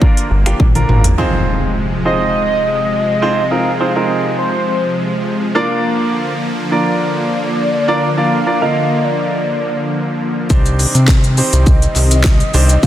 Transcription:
Already playing: D3 F3 A#3 D5
0.01 A#3 D4 F4 A#4, kick
0.17 closed hi-hat
0.31 G1
0.46 A#3 D4 F4 G4, finger snap, closed hi-hat
0.60 A#1, kick, high tom
0.75 A#3 D4 F4 A#4, closed hi-hat, mid tom
0.89 G#1, mid tom
1.04 closed hi-hat, floor tom
1.18 C3 F3 G#3 C4 D#4 F4 G#4 C5, impact
2.05 C4 D#4 F4 G#4 C5 D#5
3.22 C4 D#4 F4 G#4 C5
3.51 C4 D#4 F4 G#4 A#4 F5
3.80 C4 D#4 F4 G#4 C5
3.96 C4 D#4 F4 G#4 A#4 D#5
4.39 C5
5.55 D3 A#3 D4 F4 A#4 D5
6.71 A#3 D4 F4 A#4 D5
7.88 A#3 D4 F4 A#4 D5
8.17 A#3 D4 F4 A#4 D5 F5
8.46 A#3 D4 F4 A#4 D5
8.62 D3 A#3 F4 A#4 D#5 F5
9.05 D5
10.50 C2 C3 D#3 G3 C4 D4 D#4 G4 C5, kick, shaker
10.66 closed hi-hat, shaker
10.79 open hi-hat, shaker
10.95 C3, closed hi-hat, shaker
11.08 kick, snare, clap, shaker
11.24 closed hi-hat, shaker
11.37 C4 D#4 G4 C5 D#5, open hi-hat, shaker
11.53 C2, closed hi-hat, shaker
11.66 kick, shaker
11.82 closed hi-hat, shaker
11.96 C2, clap, open hi-hat, shaker
12.11 closed hi-hat, shaker
12.24 kick, snare, clap, shaker
12.40 closed hi-hat, shaker
12.54 C2 C4 D4 D#4 G4 C5, open hi-hat, shaker
12.69 closed hi-hat, shaker
12.83 C2 C4 D4 D#4 G4 C5 F5, kick, shaker

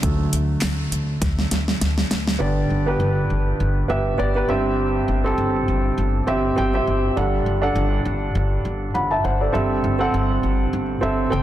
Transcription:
0.02 D2 D3 F#3 A3, kick, closed hi-hat
0.33 D2, closed hi-hat
0.61 D2, snare, clap, closed hi-hat
0.92 D2, closed hi-hat
1.22 D2, kick, snare, closed hi-hat
1.39 snare
1.51 D2, snare, closed hi-hat
1.68 snare
1.81 D2, snare, closed hi-hat
1.98 snare
2.11 D2, snare, closed hi-hat
2.27 snare
2.39 G1 G2 D3 B3 G4 D5
2.70 G1
2.86 B3 G4 B4
3.00 G1
3.30 G1
3.60 G1
3.88 G1 B3 G4 E5
4.18 G1 B3 G4 D5
4.35 B3 G4 B4
4.48 G1 G2 G3 C4 G4 E5
5.08 G1
5.24 C4 G4 A4
5.38 G1
5.68 G1
5.98 G1
6.27 G1 C4 G4 E5
6.56 G1 C4 G4 G5
6.74 C4 G4 E5
6.87 G1
7.17 G1 G2 G3 D4 A4 F#5
7.46 G1
7.62 D4 A4 F#5
7.75 G1
8.05 G1
8.35 G1
8.65 G1
8.94 G1 F#5 B5
9.11 E5 A5
9.24 G1 C5 F#5
9.41 A4 D5
9.52 G1 G2 G3 C4 A4 E5
9.84 G1
9.99 C4 A4 F#5
10.14 G1
10.43 G1
10.73 G1
11.01 G1 C4 A4 E5
11.30 G1 C4 A4 G5, high tom

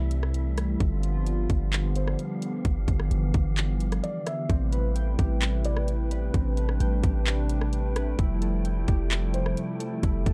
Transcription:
Already playing: C2 C3 E3 G3 A3 C4 E4 A4 E5
0.11 closed hi-hat
0.23 cross-stick
0.34 closed hi-hat
0.58 cross-stick, closed hi-hat
0.80 G1 D3 F3 B3 F4 G4 F5, kick, closed hi-hat
1.03 closed hi-hat
1.26 closed hi-hat
1.50 G1, kick, closed hi-hat
1.73 clap, closed hi-hat
1.96 C5, closed hi-hat
2.08 cross-stick
2.19 closed hi-hat
2.42 closed hi-hat
2.65 G1 E3, kick, closed hi-hat
2.88 G1, kick, closed hi-hat
3.00 cross-stick
3.11 G1, closed hi-hat
3.34 G1, kick, closed hi-hat
3.57 clap, closed hi-hat
3.80 closed hi-hat
3.92 cross-stick, closed hi-hat
4.04 D5, closed hi-hat
4.26 E5, cross-stick, closed hi-hat
4.49 A1 C3 G3 A3 C4 E4 B4 G5, kick, closed hi-hat
4.72 B4, closed hi-hat
4.95 G5, closed hi-hat
5.19 A1 G4, kick, closed hi-hat
5.42 clap, closed hi-hat
5.65 D5, closed hi-hat
5.77 cross-stick
5.88 closed hi-hat
6.11 B4, closed hi-hat
6.34 A1 C4 D4, kick, closed hi-hat
6.57 B4, closed hi-hat
6.69 cross-stick
6.80 A1 G5, closed hi-hat
7.03 A1 G4, kick, closed hi-hat
7.27 clap, closed hi-hat
7.49 closed hi-hat
7.61 cross-stick
7.73 closed hi-hat
7.96 B4, cross-stick, closed hi-hat
8.19 F1 F3 E4 A4, kick, closed hi-hat
8.42 A4, closed hi-hat
8.65 G5, closed hi-hat
8.88 F1 G4, kick, closed hi-hat
9.11 clap, closed hi-hat
9.34 C5, closed hi-hat
9.46 cross-stick
9.57 closed hi-hat
9.80 A4, closed hi-hat
10.03 F1 E4, kick, closed hi-hat
10.26 F1 A4, kick, closed hi-hat

